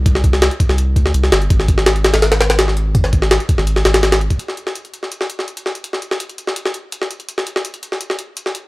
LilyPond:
<<
  \new Staff \with { instrumentName = "Sub bass" } { \clef bass \time 4/4 \key c \minor \tempo 4 = 166 c,4~ c,16 r8 c,8. d,8 c,8 g,,8 | aes,,4.~ aes,,16 aes,,2~ aes,,16~ | aes,,4~ aes,,16 r8 aes,,8. aes,,4~ aes,,16 r16 | r1 |
r1 | r1 | }
  \new DrumStaff \with { instrumentName = "Drums" } \drummode { \time 4/4 <hh bd>16 sn16 <hh bd>16 sn16 <hh sn>16 hh16 <hh bd>16 sn16 hh8 <hh bd>16 sn16 hh16 sn16 <hh sn>16 hh16 | <hh bd>16 sn16 <hh bd>16 sn16 <hh sn>16 hh16 <hh sn>16 <hh sn>16 <hh sn>16 <hh sn>16 <hh sn>16 <hh sn>16 <hh sn>16 sn16 hh8 | <hh bd>16 sn16 <hh bd>16 sn16 <hh sn>16 hh16 <hh bd>16 sn16 hh16 sn16 <hh sn>16 <hh sn>16 <hh sn>16 <hh sn>16 hh16 <hh bd>16 | hh16 sn16 hh16 sn16 hh16 hh16 hh16 sn16 hh16 sn16 hh16 sn16 hh16 hh16 sn16 hh16 |
hh16 sn16 hh16 sn16 hh16 hh16 hh16 sn16 hh16 sn16 hh8 hh16 sn16 hh16 hh16 | hh16 sn16 hh16 sn16 hh16 hh16 hh16 sn16 hh16 sn16 hh8 hh16 sn16 hh8 | }
>>